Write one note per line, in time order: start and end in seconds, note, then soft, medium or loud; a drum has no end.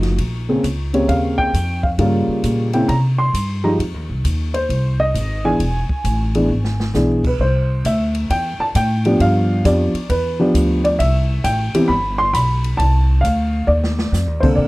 0.00 0.17 F#1 medium
0.00 0.15 F3 medium
0.00 0.15 A3 medium
0.00 0.15 D#4 medium
0.00 0.15 F#4 medium
0.00 snare soft
0.00 ride soft
0.18 0.62 A#1 medium
0.18 kick soft
0.18 ride medium
0.49 0.62 C#3 medium
0.49 0.62 A#3 soft
0.49 0.62 C4 soft
0.49 0.62 G#4 medium
0.64 1.07 C#2 medium
0.64 kick soft
0.64 hi-hat pedal soft
0.64 ride medium
0.93 1.50 C#3 medium
0.93 1.51 A#3 soft
0.93 1.51 C4 medium
0.93 1.51 G4 medium
0.93 1.09 C#5 medium
0.93 ride soft
1.08 1.52 D#2 medium
1.08 1.39 F5 medium
1.08 kick soft
1.08 ride soft
1.38 1.80 G5 loud
1.38 kick soft
1.54 1.97 F2 medium
1.54 kick soft
1.54 hi-hat pedal soft
1.54 ride medium
1.83 1.88 F5 medium
1.83 kick soft
1.98 2.26 G2 medium
1.98 2.68 C#3 medium
1.98 2.68 G3 medium
1.98 2.68 A#3 medium
1.98 2.68 F4 medium
1.98 kick soft
1.98 ride medium
2.28 muted upright bass stroke soft
2.43 2.87 A#2 medium
2.43 kick soft
2.43 hi-hat pedal soft
2.43 ride medium
2.73 2.88 C#3 medium
2.73 2.88 A#3 medium
2.73 2.88 C4 medium
2.73 2.88 E4 medium
2.73 2.88 G5 medium
2.73 ride soft
2.88 3.32 C3 medium
2.88 2.95 A#5 medium
2.88 kick soft
2.88 ride soft
3.18 3.65 C6 medium
3.33 3.77 G2 medium
3.33 kick soft
3.33 hi-hat pedal medium
3.33 ride medium
3.64 3.78 F3 medium
3.64 3.77 G#3 medium
3.64 3.78 D#4 medium
3.64 3.78 G4 medium
3.64 3.69 A#5 medium
3.79 3.94 F2 medium
3.79 kick soft
3.79 ride medium
3.94 4.09 D#2 soft
4.10 4.23 C2 medium
4.24 4.68 D#2 medium
4.24 kick soft
4.24 hi-hat pedal soft
4.24 ride medium
4.54 4.96 C5 medium
4.54 ride soft
4.69 5.13 C2 medium
4.69 kick soft
4.69 ride soft
5.00 5.46 D#5 loud
5.14 5.58 G#1 medium
5.14 kick soft
5.14 hi-hat pedal soft
5.14 ride medium
5.44 5.58 E3 medium
5.44 5.58 B3 medium
5.44 5.58 D4 soft
5.44 5.58 G#4 medium
5.44 6.91 G#5 medium
5.59 5.87 E1 medium
5.59 kick soft
5.59 ride medium
5.89 muted upright bass stroke soft
5.89 kick soft
6.04 6.48 A1 medium
6.04 kick soft
6.04 hi-hat pedal soft
6.04 ride medium
6.35 6.48 E3 medium
6.35 6.48 B3 medium
6.35 6.48 D4 medium
6.35 6.48 G#4 medium
6.35 ride soft
6.49 6.93 G#1 medium
6.64 snare soft
6.80 snare medium
6.94 7.38 B1 medium
6.94 7.21 E3 medium
6.94 7.22 B3 medium
6.94 7.21 D4 soft
6.94 7.22 G#4 medium
6.94 snare medium
6.94 hi-hat pedal soft
7.24 7.32 B4 medium
7.24 kick medium
7.24 crash medium
7.39 7.83 C2 medium
7.39 7.86 C5 medium
7.39 kick soft
7.85 8.28 D2 medium
7.85 8.27 E5 medium
7.85 kick soft
7.85 hi-hat pedal soft
7.85 ride medium
8.15 ride soft
8.30 8.57 E2 medium
8.30 8.58 G5 medium
8.30 kick soft
8.30 ride medium
8.58 8.65 A5 medium
8.58 muted upright bass stroke soft
8.75 9.18 A2 medium
8.75 9.17 G5 medium
8.75 kick soft
8.75 hi-hat pedal medium
8.75 ride medium
9.05 9.62 F3 medium
9.05 9.62 B3 medium
9.05 9.62 D4 medium
9.05 9.62 G4 medium
9.05 ride soft
9.20 9.63 G2 medium
9.20 9.66 F5 medium
9.20 kick soft
9.20 ride medium
9.65 9.92 F2 medium
9.65 9.91 F3 medium
9.65 9.92 B3 medium
9.65 9.92 D4 medium
9.65 9.92 G4 medium
9.65 10.07 D5 medium
9.65 kick soft
9.65 hi-hat pedal soft
9.65 ride medium
9.94 muted upright bass stroke soft
9.94 ride soft
10.10 10.53 E2 medium
10.10 10.86 B4 medium
10.10 kick soft
10.10 ride soft
10.39 10.96 F3 medium
10.39 10.96 B3 medium
10.39 10.96 D4 medium
10.39 10.97 G4 medium
10.54 10.98 D2 medium
10.54 kick soft
10.54 hi-hat pedal medium
10.54 ride medium
10.84 10.98 D5 medium
10.84 ride soft
10.99 11.43 C2 medium
10.99 11.45 E5 medium
10.99 kick soft
10.99 ride medium
11.44 11.72 A1 medium
11.44 11.86 G5 medium
11.44 kick soft
11.44 hi-hat pedal medium
11.44 ride medium
11.74 11.88 E3 medium
11.74 11.88 B3 medium
11.74 11.88 C4 medium
11.74 11.88 G4 medium
11.74 muted upright bass stroke soft
11.74 ride medium
11.88 12.32 G1 medium
11.88 12.19 B5 loud
11.88 kick soft
12.18 12.34 C6 loud
12.33 12.77 B1 medium
12.33 12.80 B5 medium
12.33 kick soft
12.33 hi-hat pedal medium
12.33 ride medium
12.64 ride soft
12.77 13.22 C2 medium
12.77 13.19 A5 medium
12.77 kick soft
12.77 ride soft
13.21 13.67 D2 medium
13.21 13.68 F5 medium
13.21 kick soft
13.21 hi-hat pedal soft
13.21 ride medium
13.67 14.11 D#2 medium
13.67 14.45 D5 medium
13.84 snare medium
13.99 snare medium
14.12 14.27 F2 medium
14.12 snare medium
14.12 hi-hat pedal medium
14.27 14.42 D#2 soft
14.40 14.56 C2 medium
14.40 14.68 D3 medium
14.40 14.68 A#3 medium
14.40 14.68 C4 medium
14.40 14.68 A4 medium
14.40 14.45 C5 medium
14.40 kick medium
14.40 crash medium
14.55 14.68 A#2 medium
14.55 14.68 D5 medium
14.55 kick soft